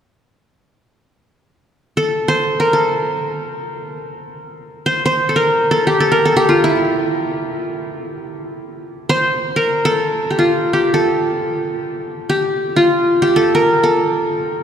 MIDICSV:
0, 0, Header, 1, 2, 480
1, 0, Start_track
1, 0, Tempo, 500000
1, 14046, End_track
2, 0, Start_track
2, 0, Title_t, "Qanun"
2, 0, Program_c, 0, 107
2, 1891, Note_on_c, 0, 69, 63
2, 2192, Note_on_c, 0, 72, 78
2, 2494, Note_on_c, 0, 70, 65
2, 2551, Note_off_c, 0, 69, 0
2, 2622, Note_on_c, 0, 69, 55
2, 2680, Note_off_c, 0, 70, 0
2, 3207, Note_off_c, 0, 72, 0
2, 3747, Note_off_c, 0, 69, 0
2, 4666, Note_on_c, 0, 72, 71
2, 4850, Note_off_c, 0, 72, 0
2, 4853, Note_on_c, 0, 72, 74
2, 5078, Note_on_c, 0, 69, 49
2, 5144, Note_on_c, 0, 70, 65
2, 5202, Note_off_c, 0, 69, 0
2, 5482, Note_on_c, 0, 69, 68
2, 5540, Note_off_c, 0, 70, 0
2, 5633, Note_on_c, 0, 67, 63
2, 5760, Note_off_c, 0, 69, 0
2, 5764, Note_on_c, 0, 69, 69
2, 5869, Note_off_c, 0, 72, 0
2, 5871, Note_on_c, 0, 70, 65
2, 5928, Note_off_c, 0, 69, 0
2, 6004, Note_on_c, 0, 69, 63
2, 6062, Note_off_c, 0, 70, 0
2, 6107, Note_off_c, 0, 67, 0
2, 6110, Note_on_c, 0, 67, 70
2, 6228, Note_on_c, 0, 65, 59
2, 6373, Note_on_c, 0, 64, 59
2, 6431, Note_off_c, 0, 65, 0
2, 7129, Note_off_c, 0, 69, 0
2, 7317, Note_off_c, 0, 67, 0
2, 7763, Note_off_c, 0, 64, 0
2, 8730, Note_on_c, 0, 72, 79
2, 9179, Note_on_c, 0, 70, 69
2, 9457, Note_on_c, 0, 69, 70
2, 9514, Note_off_c, 0, 70, 0
2, 9746, Note_off_c, 0, 72, 0
2, 9893, Note_on_c, 0, 67, 45
2, 9971, Note_on_c, 0, 65, 59
2, 10300, Note_off_c, 0, 67, 0
2, 10304, Note_on_c, 0, 67, 57
2, 10497, Note_off_c, 0, 69, 0
2, 10500, Note_on_c, 0, 69, 61
2, 11266, Note_off_c, 0, 65, 0
2, 11511, Note_off_c, 0, 67, 0
2, 11625, Note_off_c, 0, 69, 0
2, 11803, Note_on_c, 0, 67, 67
2, 12253, Note_on_c, 0, 65, 66
2, 12687, Note_off_c, 0, 67, 0
2, 12691, Note_on_c, 0, 67, 74
2, 12826, Note_on_c, 0, 69, 69
2, 13005, Note_on_c, 0, 70, 75
2, 13062, Note_off_c, 0, 69, 0
2, 13282, Note_on_c, 0, 69, 62
2, 13339, Note_off_c, 0, 70, 0
2, 13549, Note_off_c, 0, 65, 0
2, 13898, Note_off_c, 0, 67, 0
2, 14046, Note_off_c, 0, 69, 0
2, 14046, End_track
0, 0, End_of_file